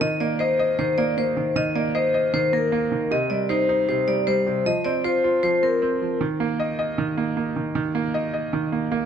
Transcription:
0.01 D#3 D#5
0.20 A#3 D5
0.39 C5 D#5
0.59 D#5
0.79 D#3 C5
0.98 A#3 D5
1.17 A#3 C5
1.37 D#3
1.56 D#3 D#5
1.75 A#3 D5
1.95 C5 D#5
2.14 D#5
2.34 D#3 C5
2.53 A#3 A#4
2.72 A#3
2.92 D#3
3.11 C3 D#5
3.30 G3 D5
3.49 D#4 C5
3.69 D#4
3.88 C3 C5
4.08 G3 D5
4.27 G3 C5
4.46 C3
4.66 F3 D#5
4.85 C4 D5
5.04 F4 C5
5.24 F4
5.43 F3 C5
5.63 C4 A#4
5.82 C4
6.01 F3
6.21 D#3
6.40 A#3
6.59 D#5
6.79 D#5
6.98 D#3
7.17 A#3
7.37 A#3
7.56 D#3
7.75 D#3
7.95 A#3
8.14 D#5
8.34 D#5
8.53 D#3
8.72 A#3
8.92 A#3

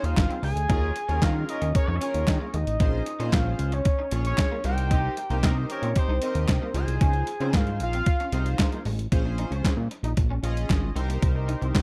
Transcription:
Already playing: D#4 F4 G#4 C5
0.03 D#2 F5, closed hi-hat
0.16 G#1, muted clean electric guitar stroke, kick, snare, clap, closed hi-hat
0.30 C4, closed hi-hat
0.42 C#2 D#4 G#5, open hi-hat
0.56 D2, closed hi-hat
0.69 D#2 C#4 D#4 F4 G#4 A#4, kick, closed hi-hat
0.96 muted clean electric guitar stroke, closed hi-hat
1.09 D#2 C#4 F4 G#4 A#4, closed hi-hat
1.22 D#3 A#3 C#4 F4 A#4 F5, kick, snare, clap, closed hi-hat
1.35 muted clean electric guitar stroke
1.49 C#4 F4 A#4 D#5, closed hi-hat
1.62 D#2 C#4, closed hi-hat
1.75 G#4 A#4 C#5, muted clean electric guitar stroke, kick, closed hi-hat
1.88 F2 D#4
2.01 C#4 F4 G#4 A#4, closed hi-hat
2.14 D#2, closed hi-hat
2.27 D#3, muted clean electric guitar stroke, kick, snare, clap, closed hi-hat
2.40 A#3
2.54 D#2 G#3 D#5, closed hi-hat
2.67 A1, closed hi-hat
2.80 A#1 A#3 C#4 F4 G#4 C5, kick, closed hi-hat
3.06 muted clean electric guitar stroke, closed hi-hat
3.19 A#2 C#4 F4 G#4 C5, closed hi-hat
3.33 A#1 A#3 F5, kick, snare, clap, closed hi-hat
3.46 muted clean electric guitar stroke
3.59 C#2, closed hi-hat
3.72 C#4 C#5, closed hi-hat
3.85 muted clean electric guitar stroke, kick, closed hi-hat
3.99 D#4
4.11 A#1 C#4 F4 G#4 C#5, closed hi-hat
4.25 C#5, closed hi-hat
4.38 muted clean electric guitar stroke, kick, snare, clap, closed hi-hat
4.52 A#3
4.64 C2 G3 D#4 G4 A#4 C5 G5, closed hi-hat
4.78 closed hi-hat
4.91 C4 D#4 G4, kick, closed hi-hat
5.17 muted clean electric guitar stroke, closed hi-hat
5.30 C2 A#3 C4 D#4 G4 A#4 C5, closed hi-hat
5.43 C3 A#3 D#4 G4 A#4 D#5, kick, snare, clap, closed hi-hat
5.57 muted clean electric guitar stroke
5.70 D#4 G4 A#4 C#5, closed hi-hat
5.82 A#2 C4, closed hi-hat
5.96 D#4 G4 C5, muted clean electric guitar stroke, kick, closed hi-hat
6.08 C2 D#4
6.22 C4 D#4 G4 A#4 D#5, closed hi-hat
6.35 D#2, closed hi-hat
6.48 C3, muted clean electric guitar stroke, kick, snare, clap, closed hi-hat
6.62 A#3
6.74 C#2 G#3 D#4 F4 G#4 C5 G#5, closed hi-hat
6.88 C2, closed hi-hat
7.01 C#2 C#4, kick, closed hi-hat
7.13 closed hi-hat
7.27 muted clean electric guitar stroke, closed hi-hat
7.40 C#3 C4 D#4 F4 G#4 C5, closed hi-hat
7.53 G#2 A#3 F5, kick, snare, clap, closed hi-hat
7.67 muted clean electric guitar stroke, closed hi-hat
7.80 A#1 F5, closed hi-hat
7.93 C4, closed hi-hat
8.06 muted clean electric guitar stroke, kick, closed hi-hat
8.20 C#4, closed hi-hat
8.32 C2 C4 D#4 F4 G#4 C5, closed hi-hat
8.46 closed hi-hat
8.59 muted clean electric guitar stroke, kick, snare, clap, closed hi-hat
8.72 A#3, closed hi-hat
8.85 A1 G#3, open hi-hat
8.99 closed hi-hat
9.12 A#1 C#4 F4 G#4 C5, kick, closed hi-hat
9.25 muted clean electric guitar stroke
9.38 D#4, closed hi-hat
9.51 C#2 C#4, closed hi-hat
9.64 A#2 C#4, kick, snare, clap, closed hi-hat
9.77 A#2
9.91 muted clean electric guitar stroke, closed hi-hat
10.03 A#1 D#4, closed hi-hat
10.17 A#1, muted clean electric guitar stroke, kick, closed hi-hat
10.30 C#4
10.43 A#1 C#4 F4 G#4 D#5, closed hi-hat
10.57 closed hi-hat
10.70 G#1, muted clean electric guitar stroke, kick, snare, clap, closed hi-hat
10.95 C2 C4 D#4 G4 A#4 C5, closed hi-hat
11.09 A#3, closed hi-hat
11.22 C2, kick, closed hi-hat
11.35 muted clean electric guitar stroke
11.48 D#4, closed hi-hat
11.62 C2 C4, closed hi-hat
11.75 C3 C4, kick, snare, clap, closed hi-hat

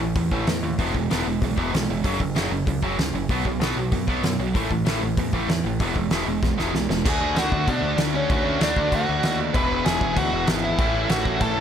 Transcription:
0.00 A1 A2 E3
0.16 E2 A2 E3, kick, open hi-hat
0.31 A1 A2 E3 A3, kick
0.47 E2 A2 E3, snare, open hi-hat
0.62 D#2 A2 E3
0.78 E1 E2 B2 E3 G#3 B3, kick, open hi-hat
0.94 E1 E2 B2 E3 G#3, kick
1.10 E1 E2 B2 E3 G#3 B3, snare, open hi-hat
1.26 E1 E2 B2 E3 G#3
1.41 B1 E2 B2 E3 G#3, kick, open hi-hat
1.56 E1 E2 B2 E3 G#3 B3, kick
1.72 B1 E2 B2 E3 G#3, snare, open hi-hat
1.88 F1 E2 B2 E3 G#3
2.04 F#1 F#2 C#3 F#3, kick, open hi-hat
2.20 F#1 F#2 C#3, kick
2.35 F#1 F#2 C#3 F#3, snare, open hi-hat
2.51 F#1 F#2 C#3
2.67 C#2 F#2 C#3, kick, open hi-hat
2.83 F#1 F#2 C#3 F#3, kick
2.98 C#2 F#2 C#3, snare, open hi-hat
3.13 F#1 F#2 C#3
3.29 B1 B2 F#3 B3, kick, open hi-hat
3.45 B1 B2 F#3, kick
3.59 B1 B2, snare, open hi-hat
3.64 F#3 B3
3.76 B1 B2 F#3
3.92 F#2 B2 F#3, kick, open hi-hat
4.08 B1 B2 F#3 B3, kick
4.23 F#2 B2 F#3, snare, open hi-hat
4.38 B1 B2 F#3
4.55 A1 A2 E3 A3, kick, open hi-hat
4.71 A1 A2 E3, kick
4.86 A1 A2 E3 A3, snare, open hi-hat
5.02 A1 A2 E3
5.17 E2 A2 E3, kick, open hi-hat
5.33 A1 A2 E3 A3, kick
5.49 E2 A2 E3, snare, open hi-hat
5.64 A1 A2 E3
5.79 E1 E2 B2 E3 G#3 B3, kick, open hi-hat
5.95 E1 E2 B2 E3 G#3, kick
6.09 E1 E2 B2 E3 G#3 B3, snare, open hi-hat
6.27 E1 E2 B2 E3 G#3
6.43 B1 E2 B2 E3 G#3, kick, snare
6.57 E1 E2 B2 E3 G#3 B3, snare
6.73 B1 E2 B2 E3 G#3, snare
6.89 E1 E2 B2 E3 G#3, snare
7.05 D2 D3 A3 D4 F#4 G#4, kick, crash
7.09 G#5
7.21 D2
7.35 D2 F#4 F#5, snare, crash
7.52 D2, kick
7.68 B2 D4 D5, kick, crash
7.82 D2
7.97 D2, snare, crash
8.14 C#4 C#5
8.29 D2 D3 A3 D4 F#4, kick, crash
8.45 D2
8.61 D2 D4 D5, snare, crash
8.76 D2, kick
8.92 D2 F#4 F#5, kick, crash
9.09 D2
9.23 D#2, snare, crash
9.53 E1 E2 B2 E3 G#3 B3 E4 B4 B5, kick, crash
9.71 E1
9.85 E1 G#4 G#5, snare, crash
10.01 E1, kick
10.16 D2 F#4 F#5, kick, crash
10.32 E1
10.47 G#1, snare, crash
10.64 E4 E5
10.78 A1 A2 E3 A3 C#4 E4, kick, crash
10.93 A1
11.09 A1 F#4 F#5, snare, crash
11.25 A1, kick
11.41 A1 A4 A5, kick, crash
11.56 A1

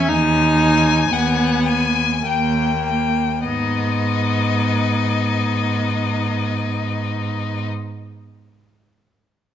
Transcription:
Already playing: C#4 E5
0.09 D#2 D#4 G#5
0.59 G#5
1.11 D#2 B3 F#5
1.66 G#5
2.25 D#2 A#3 G5
2.87 G5
3.45 G#2 B3 D#4 D#5

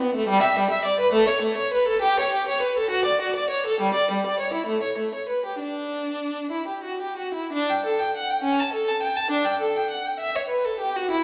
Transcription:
0.00 B3
0.15 A3
0.29 G3
0.42 E5
0.59 G3
0.71 E5
0.85 D5
1.00 B4
1.12 A3
1.29 C#5
1.42 A3
1.58 C#5
1.74 B4
1.88 A4
2.02 G4
2.20 C#5
2.34 G4
2.48 C#5
2.62 B4
2.78 A4
2.91 F#4
3.05 D5
3.21 F#4
3.36 D5
3.50 C#5
3.66 A4
3.81 G3
3.94 D5
4.11 G3
4.26 D5
4.40 C#5
4.54 E4
4.67 A3
4.83 C#5
4.98 A3
5.15 C#5
5.29 B4
5.46 G4
5.59 D4
6.51 E4
6.68 G4
6.84 F#4
7.01 G4
7.17 F#4
7.35 E4
7.53 D4
7.70 G5
7.85 A4
7.99 G5
8.17 F#5
8.30 G5
8.43 C#4
8.60 A5
8.73 A4
8.88 A5
9.03 G5
9.16 A5
9.31 D4
9.45 G5
9.60 A4
9.76 G5
9.91 F#5
10.06 G5
10.20 E5
10.36 C#5
10.49 B4
10.65 A4
10.80 G4
10.96 F#4
11.11 E4

